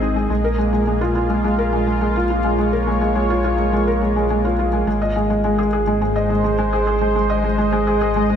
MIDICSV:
0, 0, Header, 1, 4, 480
1, 0, Start_track
1, 0, Tempo, 571429
1, 250, Time_signature, 4, 2, 24, 8
1, 7023, End_track
2, 0, Start_track
2, 0, Title_t, "Analog synth pad"
2, 0, Program_c, 0, 89
2, 0, Note_on_c, 0, 56, 65
2, 0, Note_on_c, 0, 68, 75
2, 0, Note_on_c, 0, 72, 71
2, 0, Note_on_c, 0, 75, 65
2, 250, Note_on_c, 0, 58, 61
2, 252, Note_off_c, 0, 72, 0
2, 253, Note_off_c, 0, 56, 0
2, 507, Note_on_c, 0, 65, 73
2, 1159, Note_off_c, 0, 75, 0
2, 1977, Note_on_c, 0, 73, 72
2, 4090, Note_off_c, 0, 73, 0
2, 4090, Note_on_c, 0, 56, 72
2, 4921, Note_on_c, 0, 72, 71
2, 5297, Note_off_c, 0, 65, 0
2, 5626, Note_off_c, 0, 58, 0
2, 5814, Note_on_c, 0, 75, 80
2, 7023, Note_off_c, 0, 56, 0
2, 7023, Note_off_c, 0, 68, 0
2, 7023, Note_off_c, 0, 72, 0
2, 7023, Note_off_c, 0, 75, 0
2, 7023, End_track
3, 0, Start_track
3, 0, Title_t, "Felt piano"
3, 0, Program_c, 1, 0
3, 0, Control_c, 1, 64, 127
3, 0, Note_on_c, 1, 56, 58
3, 0, Note_on_c, 1, 60, 76
3, 0, Note_on_c, 1, 68, 81
3, 0, Note_on_c, 1, 75, 60
3, 13, Note_on_c, 1, 63, 55
3, 126, Note_off_c, 1, 63, 0
3, 133, Note_off_c, 1, 56, 0
3, 133, Note_on_c, 1, 56, 58
3, 239, Note_off_c, 1, 56, 0
3, 252, Note_on_c, 1, 56, 64
3, 261, Control_c, 1, 64, 0
3, 265, Note_off_c, 1, 75, 0
3, 266, Note_off_c, 1, 60, 0
3, 270, Note_off_c, 1, 68, 0
3, 365, Note_off_c, 1, 56, 0
3, 372, Note_on_c, 1, 70, 62
3, 424, Control_c, 1, 64, 127
3, 486, Note_off_c, 1, 70, 0
3, 490, Note_on_c, 1, 56, 62
3, 599, Note_off_c, 1, 56, 0
3, 611, Note_on_c, 1, 56, 57
3, 679, Note_off_c, 1, 56, 0
3, 730, Note_on_c, 1, 56, 65
3, 844, Note_off_c, 1, 56, 0
3, 850, Note_on_c, 1, 65, 62
3, 919, Note_off_c, 1, 65, 0
3, 969, Note_on_c, 1, 65, 61
3, 1038, Note_off_c, 1, 65, 0
3, 1090, Note_on_c, 1, 56, 58
3, 1199, Note_off_c, 1, 56, 0
3, 1212, Note_on_c, 1, 56, 64
3, 1325, Note_off_c, 1, 56, 0
3, 1332, Note_on_c, 1, 70, 60
3, 1445, Note_off_c, 1, 70, 0
3, 1451, Note_on_c, 1, 56, 60
3, 1559, Note_off_c, 1, 56, 0
3, 1571, Note_on_c, 1, 56, 61
3, 1639, Note_off_c, 1, 56, 0
3, 1692, Note_on_c, 1, 56, 62
3, 1805, Note_off_c, 1, 56, 0
3, 1812, Note_on_c, 1, 65, 59
3, 1880, Note_off_c, 1, 65, 0
3, 1933, Note_on_c, 1, 65, 60
3, 2000, Note_off_c, 1, 65, 0
3, 2053, Note_on_c, 1, 56, 59
3, 2158, Note_off_c, 1, 56, 0
3, 2171, Note_on_c, 1, 56, 67
3, 2285, Note_off_c, 1, 56, 0
3, 2292, Note_on_c, 1, 70, 63
3, 2405, Note_off_c, 1, 70, 0
3, 2411, Note_on_c, 1, 56, 60
3, 2518, Note_off_c, 1, 56, 0
3, 2530, Note_on_c, 1, 56, 67
3, 2599, Note_off_c, 1, 56, 0
3, 2651, Note_on_c, 1, 56, 68
3, 2765, Note_off_c, 1, 56, 0
3, 2772, Note_on_c, 1, 65, 68
3, 2840, Note_off_c, 1, 65, 0
3, 2891, Note_on_c, 1, 65, 65
3, 2959, Note_off_c, 1, 65, 0
3, 3012, Note_on_c, 1, 56, 59
3, 3121, Note_off_c, 1, 56, 0
3, 3134, Note_on_c, 1, 56, 65
3, 3246, Note_off_c, 1, 56, 0
3, 3255, Note_on_c, 1, 70, 64
3, 3367, Note_off_c, 1, 70, 0
3, 3372, Note_on_c, 1, 56, 56
3, 3483, Note_off_c, 1, 56, 0
3, 3496, Note_on_c, 1, 56, 63
3, 3562, Note_off_c, 1, 56, 0
3, 3614, Note_on_c, 1, 56, 68
3, 3727, Note_off_c, 1, 56, 0
3, 3736, Note_on_c, 1, 65, 61
3, 3802, Note_off_c, 1, 65, 0
3, 3855, Note_on_c, 1, 65, 63
3, 3921, Note_off_c, 1, 65, 0
3, 3972, Note_on_c, 1, 56, 62
3, 4080, Note_off_c, 1, 56, 0
3, 4093, Note_on_c, 1, 56, 68
3, 4101, Control_c, 1, 64, 0
3, 4206, Note_off_c, 1, 56, 0
3, 4213, Note_on_c, 1, 75, 61
3, 4261, Control_c, 1, 64, 127
3, 4326, Note_off_c, 1, 75, 0
3, 4332, Note_on_c, 1, 56, 61
3, 4440, Note_off_c, 1, 56, 0
3, 4453, Note_on_c, 1, 56, 63
3, 4520, Note_off_c, 1, 56, 0
3, 4571, Note_on_c, 1, 56, 72
3, 4685, Note_off_c, 1, 56, 0
3, 4691, Note_on_c, 1, 68, 66
3, 4759, Note_off_c, 1, 68, 0
3, 4812, Note_on_c, 1, 68, 66
3, 4880, Note_off_c, 1, 68, 0
3, 4932, Note_on_c, 1, 56, 64
3, 5040, Note_off_c, 1, 56, 0
3, 5053, Note_on_c, 1, 56, 64
3, 5166, Note_off_c, 1, 56, 0
3, 5172, Note_on_c, 1, 75, 65
3, 5285, Note_off_c, 1, 75, 0
3, 5291, Note_on_c, 1, 56, 66
3, 5398, Note_off_c, 1, 56, 0
3, 5410, Note_on_c, 1, 56, 63
3, 5479, Note_off_c, 1, 56, 0
3, 5531, Note_on_c, 1, 56, 73
3, 5645, Note_off_c, 1, 56, 0
3, 5651, Note_on_c, 1, 68, 66
3, 5719, Note_off_c, 1, 68, 0
3, 5770, Note_on_c, 1, 68, 61
3, 5839, Note_off_c, 1, 68, 0
3, 5890, Note_on_c, 1, 56, 62
3, 5996, Note_off_c, 1, 56, 0
3, 6009, Note_on_c, 1, 56, 71
3, 6124, Note_off_c, 1, 56, 0
3, 6129, Note_on_c, 1, 75, 66
3, 6244, Note_off_c, 1, 75, 0
3, 6249, Note_on_c, 1, 56, 62
3, 6356, Note_off_c, 1, 56, 0
3, 6369, Note_on_c, 1, 56, 66
3, 6438, Note_off_c, 1, 56, 0
3, 6489, Note_on_c, 1, 56, 73
3, 6604, Note_off_c, 1, 56, 0
3, 6611, Note_on_c, 1, 68, 68
3, 6679, Note_off_c, 1, 68, 0
3, 6731, Note_on_c, 1, 68, 70
3, 6799, Note_off_c, 1, 68, 0
3, 6854, Note_on_c, 1, 56, 65
3, 6959, Note_off_c, 1, 56, 0
3, 6971, Note_on_c, 1, 56, 65
3, 7023, Note_off_c, 1, 56, 0
3, 7023, End_track
4, 0, Start_track
4, 0, Title_t, "Detuned saw bass"
4, 0, Program_c, 2, 39
4, 0, Note_on_c, 2, 32, 81
4, 227, Note_off_c, 2, 32, 0
4, 249, Note_on_c, 2, 34, 78
4, 4066, Note_off_c, 2, 34, 0
4, 4089, Note_on_c, 2, 32, 77
4, 7023, Note_off_c, 2, 32, 0
4, 7023, End_track
0, 0, End_of_file